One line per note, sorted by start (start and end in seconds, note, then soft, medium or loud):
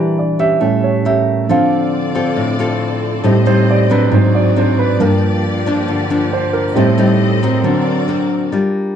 0.00 0.59 E3 medium
0.00 0.63 E3 soft
0.00 0.62 G3 soft
0.00 0.16 D4 medium
0.00 0.62 D4 soft
0.00 0.17 G4 medium
0.00 0.17 A#4 medium
0.00 0.17 D5 medium
0.19 0.39 D5 medium
0.39 1.01 C#4 medium
0.39 1.01 G4 medium
0.39 0.80 E5 medium
0.61 1.24 A2 soft
0.61 1.24 G3 soft
0.61 1.46 A3 medium
0.61 1.24 C#4 soft
0.84 1.05 C#5 soft
1.05 1.45 C#4 soft
1.05 1.46 G4 soft
1.05 1.46 A#4 medium
1.05 1.46 E5 medium
1.49 2.11 D3 soft
1.49 2.35 D3 medium
1.49 2.11 F3 soft
1.49 4.97 C4 medium
1.49 2.11 C4 soft
1.49 2.12 C4 soft
1.49 3.23 F4 medium
1.49 2.12 F4 medium
1.49 4.10 A4 medium
1.49 2.12 A4 medium
1.49 3.23 D5 medium
1.49 2.12 F5 medium
2.15 2.55 C4 medium
2.15 2.55 F4 medium
2.15 2.55 A4 medium
2.36 3.22 A2 medium
2.59 3.23 C4 medium
2.59 3.23 F4 medium
2.59 3.23 A4 medium
3.24 4.10 A2 medium
3.24 4.08 A2 soft
3.24 3.37 G3 soft
3.24 4.08 G3 soft
3.24 3.37 C4 medium
3.24 4.09 C4 soft
3.24 3.37 D#4 medium
3.24 4.11 G4 medium
3.24 4.11 D#5 medium
3.46 3.87 G3 medium
3.46 3.87 C4 medium
3.46 3.87 D#4 medium
3.46 3.68 C5 medium
3.70 3.91 D5 medium
3.90 4.52 F#3 medium
3.90 4.53 C4 medium
3.90 4.53 D4 medium
3.90 4.12 B4 medium
4.12 4.98 G#2 medium
4.12 4.96 G#2 soft
4.12 4.97 F#3 soft
4.12 4.97 C4 soft
4.12 4.99 F#4 medium
4.12 4.99 G#4 medium
4.12 4.35 C5 medium
4.12 6.73 D5 medium
4.35 4.56 D5 medium
4.56 4.97 F#3 soft
4.56 4.97 C4 medium
4.56 4.97 D4 medium
4.56 4.79 C5 medium
4.79 5.00 B4 medium
4.99 5.29 G2 soft
4.99 5.86 G2 medium
4.99 5.29 F3 soft
4.99 5.44 F3 medium
4.99 5.29 A#3 soft
4.99 5.44 A#3 medium
4.99 6.75 A#3 medium
4.99 5.44 D4 medium
4.99 6.75 F4 medium
4.99 7.62 G4 medium
4.99 5.14 A#4 medium
5.66 6.07 F3 medium
5.66 6.07 A#3 medium
5.66 6.07 D4 medium
5.88 6.74 D3 medium
6.10 6.74 F3 medium
6.10 6.75 A#3 medium
6.10 6.75 D4 medium
6.33 6.54 C5 medium
6.53 6.75 A#4 medium
6.75 7.04 A2 soft
6.75 7.62 A2 medium
6.75 7.05 G3 soft
6.75 6.89 G3 medium
6.75 8.50 C4 medium
6.75 7.05 C4 soft
6.75 6.89 C4 medium
6.75 6.89 D#4 medium
6.75 7.63 A4 medium
6.75 6.90 C5 medium
6.75 7.63 D#5 medium
6.98 7.38 G3 medium
6.98 7.38 C4 medium
6.98 7.39 D#4 medium
7.43 8.05 C4 medium
7.43 8.05 F#4 medium
7.43 8.05 A#4 medium
7.63 8.26 D3 soft
7.63 8.50 D3 medium
7.63 8.26 F#3 soft
7.63 8.27 C4 soft
7.63 8.51 F#4 medium
7.63 8.51 A#4 medium
7.63 8.50 D5 medium
8.08 8.48 C4 soft
8.08 8.48 F#4 medium
8.08 8.49 A#4 medium
8.52 8.96 G3 medium
8.52 8.96 D4 soft
8.52 8.96 F4 soft
8.52 8.96 A#4 medium